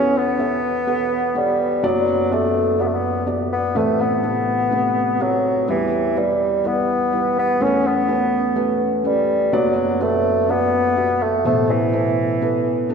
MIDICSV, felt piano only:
0, 0, Header, 1, 2, 480
1, 0, Start_track
1, 0, Tempo, 480769
1, 1832, Time_signature, 4, 2, 24, 8
1, 12923, End_track
2, 0, Start_track
2, 0, Title_t, "Felt piano"
2, 0, Program_c, 0, 0
2, 0, Note_on_c, 0, 40, 57
2, 0, Note_on_c, 0, 52, 61
2, 0, Note_on_c, 0, 59, 88
2, 0, Note_on_c, 0, 69, 84
2, 0, Note_on_c, 0, 73, 94
2, 109, Control_c, 0, 64, 127
2, 358, Note_off_c, 0, 59, 0
2, 360, Note_off_c, 0, 69, 0
2, 363, Note_off_c, 0, 73, 0
2, 387, Note_on_c, 0, 59, 70
2, 389, Note_on_c, 0, 69, 65
2, 395, Note_on_c, 0, 76, 77
2, 834, Note_off_c, 0, 59, 0
2, 835, Note_off_c, 0, 69, 0
2, 838, Note_off_c, 0, 76, 0
2, 869, Note_on_c, 0, 59, 76
2, 873, Note_on_c, 0, 69, 73
2, 876, Note_on_c, 0, 71, 88
2, 1315, Note_off_c, 0, 59, 0
2, 1317, Note_off_c, 0, 69, 0
2, 1318, Note_off_c, 0, 71, 0
2, 1346, Note_on_c, 0, 59, 67
2, 1351, Note_on_c, 0, 69, 62
2, 1354, Note_on_c, 0, 73, 74
2, 1793, Note_off_c, 0, 59, 0
2, 1794, Note_off_c, 0, 40, 0
2, 1794, Note_off_c, 0, 52, 0
2, 1796, Note_off_c, 0, 69, 0
2, 1797, Note_off_c, 0, 73, 0
2, 1826, Note_on_c, 0, 59, 91
2, 1829, Note_on_c, 0, 66, 86
2, 1830, Note_on_c, 0, 30, 64
2, 1830, Note_on_c, 0, 42, 65
2, 1835, Note_on_c, 0, 74, 99
2, 1846, Control_c, 0, 64, 0
2, 2022, Control_c, 0, 64, 127
2, 2273, Note_off_c, 0, 59, 0
2, 2274, Note_off_c, 0, 66, 0
2, 2277, Note_off_c, 0, 74, 0
2, 2308, Note_on_c, 0, 59, 70
2, 2315, Note_on_c, 0, 66, 66
2, 2319, Note_on_c, 0, 74, 80
2, 2754, Note_off_c, 0, 59, 0
2, 2757, Note_off_c, 0, 66, 0
2, 2759, Note_off_c, 0, 74, 0
2, 2782, Note_on_c, 0, 59, 62
2, 2787, Note_on_c, 0, 66, 59
2, 2790, Note_on_c, 0, 74, 66
2, 3231, Note_off_c, 0, 59, 0
2, 3233, Note_off_c, 0, 66, 0
2, 3235, Note_off_c, 0, 74, 0
2, 3257, Note_on_c, 0, 59, 69
2, 3264, Note_on_c, 0, 66, 61
2, 3265, Note_on_c, 0, 74, 75
2, 3708, Note_off_c, 0, 59, 0
2, 3710, Note_off_c, 0, 30, 0
2, 3710, Note_off_c, 0, 42, 0
2, 3712, Note_off_c, 0, 66, 0
2, 3712, Note_off_c, 0, 74, 0
2, 3743, Note_on_c, 0, 57, 85
2, 3747, Note_on_c, 0, 33, 58
2, 3747, Note_on_c, 0, 60, 76
2, 3748, Note_on_c, 0, 45, 60
2, 3751, Note_on_c, 0, 71, 94
2, 3765, Control_c, 0, 64, 0
2, 3957, Control_c, 0, 64, 127
2, 4191, Note_off_c, 0, 57, 0
2, 4193, Note_off_c, 0, 60, 0
2, 4195, Note_off_c, 0, 71, 0
2, 4222, Note_on_c, 0, 57, 67
2, 4224, Note_on_c, 0, 48, 63
2, 4226, Note_on_c, 0, 71, 78
2, 4670, Note_off_c, 0, 57, 0
2, 4672, Note_off_c, 0, 48, 0
2, 4672, Note_off_c, 0, 71, 0
2, 4705, Note_on_c, 0, 57, 76
2, 4710, Note_on_c, 0, 48, 67
2, 4714, Note_on_c, 0, 71, 82
2, 5152, Note_off_c, 0, 57, 0
2, 5154, Note_off_c, 0, 48, 0
2, 5157, Note_off_c, 0, 71, 0
2, 5189, Note_on_c, 0, 57, 63
2, 5191, Note_on_c, 0, 60, 59
2, 5195, Note_on_c, 0, 71, 71
2, 5628, Note_off_c, 0, 33, 0
2, 5629, Note_off_c, 0, 45, 0
2, 5634, Note_off_c, 0, 57, 0
2, 5635, Note_off_c, 0, 60, 0
2, 5637, Note_off_c, 0, 71, 0
2, 5668, Note_on_c, 0, 55, 89
2, 5670, Note_on_c, 0, 64, 80
2, 5672, Note_on_c, 0, 40, 61
2, 5672, Note_on_c, 0, 52, 56
2, 5675, Note_on_c, 0, 71, 94
2, 5681, Control_c, 0, 64, 0
2, 5839, Control_c, 0, 64, 127
2, 6113, Note_off_c, 0, 55, 0
2, 6114, Note_off_c, 0, 64, 0
2, 6117, Note_off_c, 0, 71, 0
2, 6153, Note_on_c, 0, 55, 70
2, 6153, Note_on_c, 0, 64, 64
2, 6160, Note_on_c, 0, 71, 75
2, 6596, Note_off_c, 0, 55, 0
2, 6596, Note_off_c, 0, 64, 0
2, 6600, Note_off_c, 0, 71, 0
2, 6628, Note_on_c, 0, 55, 60
2, 6630, Note_on_c, 0, 64, 58
2, 6636, Note_on_c, 0, 71, 73
2, 7074, Note_off_c, 0, 55, 0
2, 7075, Note_off_c, 0, 64, 0
2, 7077, Note_off_c, 0, 71, 0
2, 7108, Note_on_c, 0, 55, 65
2, 7113, Note_on_c, 0, 64, 58
2, 7116, Note_on_c, 0, 71, 69
2, 7552, Note_off_c, 0, 40, 0
2, 7552, Note_off_c, 0, 52, 0
2, 7553, Note_off_c, 0, 55, 0
2, 7556, Note_off_c, 0, 64, 0
2, 7557, Note_off_c, 0, 71, 0
2, 7588, Note_on_c, 0, 57, 88
2, 7592, Note_on_c, 0, 52, 58
2, 7592, Note_on_c, 0, 61, 80
2, 7593, Note_on_c, 0, 40, 60
2, 7598, Note_on_c, 0, 70, 75
2, 7605, Control_c, 0, 64, 0
2, 7652, Note_off_c, 0, 70, 0
2, 7652, Note_on_c, 0, 71, 95
2, 7765, Control_c, 0, 64, 127
2, 8034, Note_off_c, 0, 57, 0
2, 8036, Note_off_c, 0, 61, 0
2, 8057, Note_off_c, 0, 71, 0
2, 8066, Note_on_c, 0, 57, 70
2, 8069, Note_on_c, 0, 61, 66
2, 8072, Note_on_c, 0, 71, 80
2, 8513, Note_off_c, 0, 57, 0
2, 8515, Note_off_c, 0, 61, 0
2, 8516, Note_off_c, 0, 71, 0
2, 8544, Note_on_c, 0, 57, 75
2, 8546, Note_on_c, 0, 61, 73
2, 8550, Note_on_c, 0, 71, 84
2, 8992, Note_off_c, 0, 57, 0
2, 8993, Note_off_c, 0, 61, 0
2, 8995, Note_off_c, 0, 71, 0
2, 9023, Note_on_c, 0, 57, 69
2, 9031, Note_on_c, 0, 61, 60
2, 9035, Note_on_c, 0, 71, 72
2, 9472, Note_off_c, 0, 57, 0
2, 9473, Note_off_c, 0, 40, 0
2, 9473, Note_off_c, 0, 52, 0
2, 9476, Note_off_c, 0, 61, 0
2, 9478, Note_off_c, 0, 71, 0
2, 9508, Note_on_c, 0, 59, 91
2, 9512, Note_on_c, 0, 30, 61
2, 9512, Note_on_c, 0, 42, 63
2, 9514, Note_on_c, 0, 66, 84
2, 9518, Note_on_c, 0, 74, 98
2, 9525, Control_c, 0, 64, 0
2, 9679, Control_c, 0, 64, 127
2, 9955, Note_off_c, 0, 59, 0
2, 9958, Note_off_c, 0, 66, 0
2, 9959, Note_off_c, 0, 74, 0
2, 9983, Note_on_c, 0, 59, 77
2, 9990, Note_on_c, 0, 66, 69
2, 9991, Note_on_c, 0, 71, 85
2, 10432, Note_off_c, 0, 59, 0
2, 10436, Note_off_c, 0, 66, 0
2, 10436, Note_off_c, 0, 71, 0
2, 10466, Note_on_c, 0, 59, 63
2, 10471, Note_on_c, 0, 66, 58
2, 10476, Note_on_c, 0, 74, 70
2, 10914, Note_off_c, 0, 59, 0
2, 10916, Note_off_c, 0, 66, 0
2, 10919, Note_off_c, 0, 74, 0
2, 10945, Note_on_c, 0, 59, 71
2, 10948, Note_on_c, 0, 66, 65
2, 10954, Note_on_c, 0, 76, 72
2, 11394, Note_off_c, 0, 30, 0
2, 11394, Note_off_c, 0, 42, 0
2, 11394, Note_off_c, 0, 59, 0
2, 11395, Note_off_c, 0, 66, 0
2, 11398, Note_off_c, 0, 76, 0
2, 11424, Note_on_c, 0, 47, 88
2, 11429, Note_on_c, 0, 45, 61
2, 11429, Note_on_c, 0, 69, 78
2, 11431, Note_on_c, 0, 33, 62
2, 11436, Note_on_c, 0, 72, 99
2, 11448, Control_c, 0, 64, 0
2, 11613, Control_c, 0, 64, 127
2, 11873, Note_off_c, 0, 47, 0
2, 11876, Note_off_c, 0, 69, 0
2, 11879, Note_off_c, 0, 72, 0
2, 11911, Note_on_c, 0, 47, 75
2, 11912, Note_on_c, 0, 69, 66
2, 11916, Note_on_c, 0, 72, 81
2, 12358, Note_off_c, 0, 47, 0
2, 12358, Note_off_c, 0, 69, 0
2, 12360, Note_off_c, 0, 72, 0
2, 12395, Note_on_c, 0, 59, 74
2, 12396, Note_on_c, 0, 69, 69
2, 12402, Note_on_c, 0, 71, 80
2, 12840, Note_off_c, 0, 59, 0
2, 12840, Note_off_c, 0, 69, 0
2, 12843, Note_off_c, 0, 71, 0
2, 12869, Note_on_c, 0, 59, 77
2, 12875, Note_on_c, 0, 69, 72
2, 12878, Note_on_c, 0, 71, 86
2, 12923, Note_off_c, 0, 33, 0
2, 12923, Note_off_c, 0, 45, 0
2, 12923, Note_off_c, 0, 59, 0
2, 12923, Note_off_c, 0, 69, 0
2, 12923, Note_off_c, 0, 71, 0
2, 12923, End_track
0, 0, End_of_file